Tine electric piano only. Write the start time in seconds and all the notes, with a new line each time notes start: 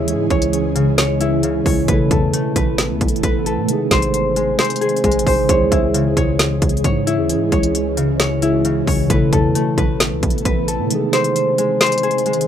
Already playing: C#3 E3 G#3 E4 G#4
0.03 C#3 E3
0.08 G#3 E4
0.13 G#4
1.18 C#3 E3 G#3 E4
1.23 G#4
1.84 B2 E3
1.89 A3 E4
1.93 A4
3.64 C3 D#3
3.69 G#3 D#4
3.73 G#4
5.24 C3 D#3 G#3 D#4
5.29 G#4
5.45 C#3 E3
5.49 G#3 E4
5.54 G#4
7.25 C#3 E3
7.30 G#3 E4
7.35 G#4
8.40 C#3 E3 G#3 E4
8.44 G#4
9.05 B2 E3
9.10 A3 E4
9.15 A4
10.86 C3 D#3
10.90 G#3 D#4
10.95 G#4